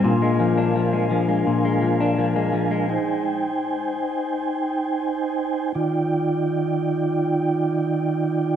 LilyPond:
<<
  \new Staff \with { instrumentName = "Tonewheel organ" } { \time 4/4 \key ees \major \tempo 4 = 84 << { aes''1~ | aes''1 | <ees ees' f' d'' g''>1 | } \\ { <d' bes' f''>1 | <ees' c'' g''>1 | r1 | } >> }
  \new Staff \with { instrumentName = "Clean electric guitar" } { \clef bass \time 4/4 \key ees \major bes,16 aes16 f16 d'16 f16 aes16 f16 aes16 bes,16 aes16 f16 d'16 f16 aes16 f16 aes16 | r1 | r1 | }
>>